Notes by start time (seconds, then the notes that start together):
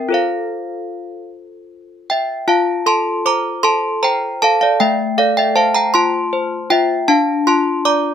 Already playing: G5
0.09 F4 A4 C5
0.14 F5
2.10 E5 G5
2.48 F4 F5 A5
2.86 A4 A5 C6
3.26 C5 A#5 D6
3.63 A4 A5 C6
4.03 C5 G5 A#5
4.42 A4 F5 A5
4.61 D5 F5
4.80 A3 E5 G5
5.18 A4 D5 F5
5.37 E5 G5
5.56 C5 F5 A5
5.75 G5 A#5
5.94 F4 A5 C6
6.33 C5
6.70 F4 E5 G5
7.08 D4 F5 A5
7.47 F4 A5 C6
7.85 D5 A#5 D6